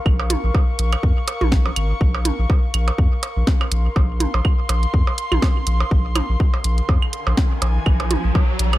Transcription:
0.00 8.78 A#4 medium
0.00 8.78 F5 medium
0.00 3.24 C#6 medium
0.06 0.36 A#1 loud
0.06 kick loud
0.06 claves medium
0.20 percussion blips soft
0.30 closed hi-hat medium
0.30 mid tom medium
0.44 0.51 A#1 medium
0.55 kick loud
0.55 percussion blips soft
0.79 0.96 A#1 medium
0.79 closed hi-hat loud
0.93 closed hi-hat soft
0.93 claves medium
0.93 percussion blips soft
1.03 1.12 F2 loud
1.03 kick loud
1.28 closed hi-hat medium
1.28 percussion blips soft
1.41 1.70 A#1 medium
1.41 mid tom medium
1.52 kick loud
1.52 snare loud
1.66 percussion blips soft
1.76 1.93 G#1 medium
1.76 closed hi-hat medium
1.76 claves medium
2.01 2.31 A#1 medium
2.01 kick loud
2.15 percussion blips soft
2.25 closed hi-hat medium
2.25 mid tom medium
2.39 2.46 A#1 medium
2.50 kick loud
2.50 percussion blips soft
2.74 2.91 A#1 medium
2.74 closed hi-hat medium
2.74 claves medium
2.88 closed hi-hat soft
2.88 percussion blips soft
2.98 3.07 F2 loud
2.98 kick loud
3.22 7.15 C6 medium
3.22 closed hi-hat medium
3.22 percussion blips soft
3.37 3.43 A#1 medium
3.47 kick loud
3.47 snare loud
3.61 claves medium
3.61 percussion blips soft
3.72 3.88 A#1 loud
3.72 closed hi-hat loud
3.96 4.26 A#1 medium
3.96 kick loud
3.96 percussion blips soft
4.20 closed hi-hat medium
4.20 mid tom medium
4.34 4.41 A#1 medium
4.34 percussion blips soft
4.45 kick loud
4.45 claves medium
4.69 4.86 A#1 medium
4.69 closed hi-hat medium
4.69 percussion blips soft
4.83 closed hi-hat soft
4.94 5.02 F2 loud
4.94 kick loud
5.07 percussion blips soft
5.18 closed hi-hat medium
5.32 5.39 A#1 loud
5.32 mid tom medium
5.32 claves medium
5.42 kick loud
5.42 snare loud
5.42 percussion blips soft
5.67 5.84 A#1 loud
5.67 closed hi-hat medium
5.80 percussion blips soft
5.91 6.21 A#1 loud
5.91 kick loud
5.91 riser medium
6.16 closed hi-hat medium
6.16 mid tom medium
6.16 claves medium
6.16 percussion blips soft
6.29 6.36 A#1 medium
6.40 kick loud
6.54 percussion blips soft
6.64 6.81 A#1 medium
6.64 closed hi-hat medium
6.78 closed hi-hat soft
6.89 6.98 F2 loud
6.89 kick loud
6.89 percussion blips soft
7.02 claves medium
7.12 8.78 G#5 medium
7.12 closed hi-hat medium
7.27 7.34 A#1 medium
7.27 percussion blips soft
7.37 kick loud
7.37 snare loud
7.62 7.79 A#1 loud
7.62 closed hi-hat medium
7.62 percussion blips soft
7.86 8.17 A#1 loud
7.86 kick loud
7.86 claves medium
8.00 closed hi-hat soft
8.00 percussion blips soft
8.11 closed hi-hat medium
8.11 mid tom medium
8.24 8.31 A#1 medium
8.35 kick loud
8.35 percussion blips soft
8.59 8.76 A#1 medium
8.59 closed hi-hat medium
8.73 closed hi-hat soft
8.73 claves medium
8.73 percussion blips soft

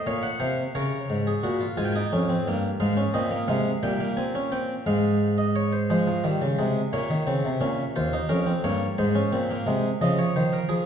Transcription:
0.07 0.28 A#2 medium
0.07 0.28 C#5 medium
0.07 0.23 F5 medium
0.23 0.40 F#5 medium
0.40 0.61 C3 medium
0.40 0.61 C5 medium
0.40 0.61 F5 medium
0.75 0.96 C#3 medium
0.75 1.25 A#4 medium
0.75 1.75 C#5 medium
1.10 1.31 G#2 medium
1.27 1.43 G#4 medium
1.44 1.65 A#2 medium
1.44 1.60 F#4 medium
1.61 1.76 F4 medium
1.77 1.99 G#2 medium
1.77 1.94 F4 loud
1.77 1.84 G#5 medium
1.85 1.92 G5 medium
1.92 2.12 D#4 medium
1.92 2.78 G#5 medium
2.13 2.33 F2 medium
2.13 2.29 C#4 medium
2.29 2.46 C4 medium
2.47 2.68 G2 medium
2.47 2.68 A#3 medium
2.80 3.01 G#2 medium
2.80 2.97 G#3 loud
2.80 3.01 F5 medium
2.97 3.14 C#4 medium
3.14 3.36 A#2 medium
3.14 3.31 C4 medium
3.14 3.35 D#5 medium
3.31 3.48 A#3 medium
3.48 3.69 C3 medium
3.48 3.70 G#3 loud
3.48 3.70 F5 medium
3.83 4.83 A#2 medium
3.83 4.00 G3 loud
3.83 4.04 G5 medium
4.00 4.17 A#3 medium
4.17 4.34 C4 medium
4.17 4.38 G#5 medium
4.35 4.52 C#4 loud
4.52 4.73 C4 medium
4.52 4.73 G5 medium
4.86 5.87 G#2 medium
4.86 5.87 G#3 medium
4.86 5.36 F5 medium
5.38 5.55 D#5 medium
5.56 5.72 C#5 medium
5.73 5.89 C5 medium
5.90 6.06 F3 medium
5.90 6.07 G#3 medium
5.90 6.90 C5 medium
6.07 6.24 F3 medium
6.24 6.41 D#3 medium
6.24 6.45 G3 medium
6.42 6.58 C#3 medium
6.59 6.80 C3 medium
6.59 6.80 G#3 medium
6.93 7.10 A#2 medium
6.93 7.14 A#3 medium
6.93 7.93 C#5 medium
7.10 7.27 D#3 medium
7.27 7.44 C#3 medium
7.27 7.48 C4 medium
7.45 7.61 C3 medium
7.61 7.82 A#2 medium
7.61 7.82 C#4 medium
7.96 8.17 D#2 medium
7.96 8.13 F4 medium
7.96 8.17 C5 medium
8.13 8.30 D#4 medium
8.29 8.51 F2 medium
8.29 8.46 C#4 medium
8.29 8.51 A#4 medium
8.46 8.63 C4 medium
8.64 8.85 G2 medium
8.64 8.85 A#3 medium
8.64 8.85 C#5 medium
8.98 9.20 G#2 medium
8.98 9.15 G#3 medium
8.98 9.98 C5 medium
9.15 9.32 C#4 medium
9.32 9.54 A#2 medium
9.32 9.49 C4 medium
9.50 9.67 A#3 medium
9.67 9.88 C3 medium
9.67 9.88 G#3 medium
10.01 10.22 C#3 medium
10.01 10.68 F3 medium
10.01 10.18 D#5 medium
10.19 10.35 C#5 medium
10.36 10.57 D#3 medium
10.36 10.52 C5 medium
10.53 10.69 A#4 medium
10.69 10.86 F3 medium
10.69 10.86 G#4 medium

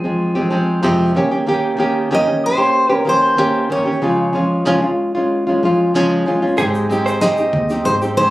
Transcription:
0.00 0.35 C4 medium
0.00 0.80 G#4 medium
0.05 0.36 F3 soft
0.05 0.36 G#3 soft
0.35 0.49 F3 medium
0.35 0.50 G#3 medium
0.35 0.51 C4 medium
0.35 0.51 G4 medium
0.50 0.82 F3 medium
0.50 0.82 G#3 medium
0.50 0.83 C4 medium
0.83 1.15 F2 medium
0.83 1.15 C3 medium
0.83 1.14 F3 medium
0.83 1.15 G#3 medium
0.83 1.16 C4 medium
0.83 1.16 G4 loud
1.15 1.31 D#3 medium
1.15 1.31 A#3 medium
1.15 1.32 C#4 medium
1.15 1.30 G4 medium
1.31 1.46 A#3 medium
1.31 1.47 C#4 medium
1.31 1.47 G4 medium
1.47 1.76 D#3 medium
1.47 1.77 A#3 medium
1.47 1.78 C#4 medium
1.47 1.79 G4 loud
1.77 2.10 D#3 medium
1.77 2.11 A#3 medium
1.77 2.11 C#4 medium
1.77 2.11 G4 medium
2.11 2.27 D#3 medium
2.11 2.27 A#3 medium
2.11 2.26 C#4 medium
2.11 2.25 G4 medium
2.11 2.46 D#5 loud
2.26 2.59 A#3 soft
2.26 2.58 C#4 medium
2.26 2.57 G4 medium
2.46 2.95 C5 loud
2.58 2.91 A#3 soft
2.58 2.90 C#4 medium
2.58 2.88 G4 medium
2.90 3.04 A#3 soft
2.90 3.05 C#4 medium
2.90 3.06 G4 medium
2.95 3.08 A#4 loud
3.05 3.36 D#3 medium
3.05 3.37 A#3 medium
3.05 3.37 C#4 medium
3.05 3.38 G4 medium
3.09 3.71 C5 loud
3.37 3.69 D#3 medium
3.37 3.69 A#3 medium
3.37 3.70 C#4 medium
3.37 3.70 G4 medium
3.70 3.86 D#3 medium
3.70 3.87 A#3 medium
3.70 3.86 C#4 medium
3.70 3.84 G4 medium
3.70 4.95 C#5 medium
3.85 4.02 A#3 soft
3.85 4.02 C#4 medium
3.85 4.02 G4 medium
4.02 4.34 C#3 medium
4.02 4.32 F3 medium
4.02 4.33 G#3 medium
4.02 4.34 C#4 medium
4.02 4.35 F4 medium
4.33 4.64 F3 medium
4.33 4.65 G#3 medium
4.33 4.66 C#4 medium
4.33 4.66 F4 medium
4.65 4.82 C#3 loud
4.65 4.82 F3 loud
4.65 4.82 G#3 loud
4.65 4.82 C#4 loud
4.65 4.81 F4 loud
4.82 5.15 G#3 medium
4.82 5.15 C#4 medium
4.82 5.14 F4 medium
5.15 5.48 G#3 medium
5.15 5.47 C#4 medium
5.15 5.46 F4 medium
5.47 5.62 G#3 medium
5.47 5.63 C#4 medium
5.47 5.62 F4 medium
5.63 5.94 F3 medium
5.63 5.94 G#3 medium
5.63 5.95 C#4 medium
5.63 5.95 F4 medium
5.94 6.26 C#3 medium
5.94 6.25 F3 medium
5.94 6.25 G#3 medium
5.94 6.26 C#4 loud
5.94 6.27 F4 medium
6.26 6.42 F3 medium
6.26 6.42 G#3 medium
6.26 6.42 C#4 medium
6.26 6.41 F4 medium
6.42 6.57 G#3 medium
6.42 6.58 C#4 medium
6.42 6.58 F4 medium
6.56 7.50 G#1 loud
6.56 7.74 G#3 medium
6.56 6.88 G#3 medium
6.56 6.89 C4 medium
6.56 7.74 D#4 medium
6.56 6.90 D#4 medium
6.56 7.74 G4 medium
6.56 6.73 G#4 loud
6.56 7.75 C5 medium
6.56 kick loud
6.56 shaker medium
6.60 6.91 G4 medium
6.74 shaker soft
6.90 7.21 G#3 medium
6.90 7.22 C4 medium
6.90 7.22 D#4 medium
6.90 7.23 G4 medium
6.90 shaker medium
7.06 7.51 C5 medium
7.06 shaker medium
7.21 7.38 G#3 medium
7.21 7.38 C4 medium
7.21 7.38 D#4 medium
7.21 7.38 G4 medium
7.21 7.81 D#5 loud
7.21 snare loud
7.21 shaker medium
7.37 7.71 C4 soft
7.37 7.71 D#4 medium
7.37 7.69 G4 medium
7.37 shaker soft
7.53 7.83 D#2 loud
7.53 kick medium
7.69 8.02 D#4 medium
7.69 8.01 G4 medium
7.69 snare soft
7.69 shaker soft
7.74 8.03 C4 medium
7.84 8.30 G#1 loud
7.84 8.30 G#3 medium
7.84 8.30 D#4 medium
7.84 8.30 G4 medium
7.84 7.94 C5 loud
7.84 8.30 C5 medium
7.84 kick medium
7.84 shaker medium
8.02 8.17 C4 soft
8.02 8.18 D#4 medium
8.02 8.18 G4 medium
8.02 shaker medium
8.17 8.30 G#3 medium
8.17 8.30 C4 medium
8.17 8.30 D#4 medium
8.17 8.30 G4 medium
8.17 8.30 C5 loud
8.17 kick loud

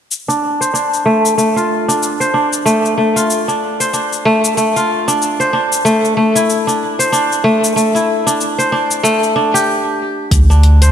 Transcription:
0.11 cabasa soft
0.28 0.73 D4 medium
0.28 cabasa soft
0.61 1.79 C5 medium
0.61 cabasa medium
0.74 1.88 D4 medium
0.74 cabasa soft
0.94 cabasa soft
1.06 1.37 A3 medium
1.25 cabasa medium
1.38 2.65 A3 medium
1.38 cabasa soft
1.56 3.08 F4 medium
1.56 cabasa soft
1.88 2.33 D4 medium
1.88 cabasa medium
2.03 cabasa soft
2.20 3.39 C5 medium
2.20 cabasa soft
2.34 3.48 D4 medium
2.53 cabasa medium
2.66 2.97 A3 medium
2.66 cabasa soft
2.85 cabasa soft
2.98 4.25 A3 medium
3.16 4.67 F4 medium
3.16 cabasa medium
3.30 cabasa soft
3.48 3.93 D4 medium
3.48 cabasa soft
3.80 4.99 C5 medium
3.80 cabasa medium
3.93 5.07 D4 medium
3.93 cabasa soft
4.13 cabasa soft
4.25 4.57 A3 loud
4.45 cabasa medium
4.57 5.84 A3 medium
4.57 cabasa medium
4.76 6.28 F4 medium
4.76 cabasa soft
5.08 5.53 D4 medium
5.08 cabasa medium
5.22 cabasa medium
5.40 6.59 C5 medium
5.40 cabasa soft
5.53 6.67 D4 medium
5.72 cabasa medium
5.85 6.16 A3 medium
5.85 cabasa soft
6.05 cabasa soft
6.17 7.44 A3 medium
6.35 7.92 E4 medium
6.35 cabasa medium
6.50 cabasa soft
6.67 7.12 D4 medium
6.67 cabasa soft
6.99 8.18 C5 medium
6.99 cabasa medium
7.12 8.26 D4 medium
7.12 cabasa soft
7.32 cabasa soft
7.44 7.76 A3 medium
7.64 cabasa medium
7.76 9.03 A3 medium
7.76 cabasa soft
7.95 9.51 E4 medium
7.95 cabasa soft
8.27 8.72 D4 medium
8.27 cabasa medium
8.41 cabasa soft
8.58 9.77 C5 medium
8.58 cabasa soft
8.72 9.35 D4 medium
8.91 cabasa medium
9.03 10.92 A3 medium
9.03 cabasa medium
9.23 cabasa soft
9.36 10.50 D4 medium
9.54 10.92 G4 medium
9.54 cabasa medium
10.31 10.92 D2 loud
10.31 kick loud
10.31 closed hi-hat medium
10.31 cabasa medium
10.50 10.92 D4 medium
10.50 cabasa soft
10.63 closed hi-hat soft
10.82 10.92 C5 medium
10.82 closed hi-hat soft
10.82 cabasa medium

